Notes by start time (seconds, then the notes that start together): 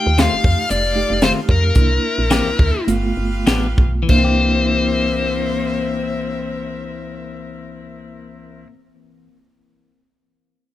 Already playing: A3 D#4 F4 G4 A4 F5 G5
0.07 D#2
0.18 D#3 A3 C4 F4 F5, snare, closed hi-hat
0.32 F1
0.44 F2, kick
0.70 F1 D5, closed hi-hat
0.95 A3 D#4 G4
1.10 F1
1.22 D#3 A3 C4 F4 C5, snare, closed hi-hat
1.49 F2 A#4, kick
1.75 C2 A#3 D4 E4 A#4 C5 E5, kick, closed hi-hat
2.18 A#1
2.30 E3 A#3 C4 G4, snare, closed hi-hat
2.59 D2, kick
2.87 G1 A3 B3 F4 G4 B4 F5, closed hi-hat
3.17 G1
3.46 A1 F3 B3 D4 G4, snare, closed hi-hat
3.78 B1, kick
4.03 E3
4.07 C2 A#3 D4 E4 A#4 C5 E5, kick, crash
4.11 A#3 E4
4.18 C4
4.25 G4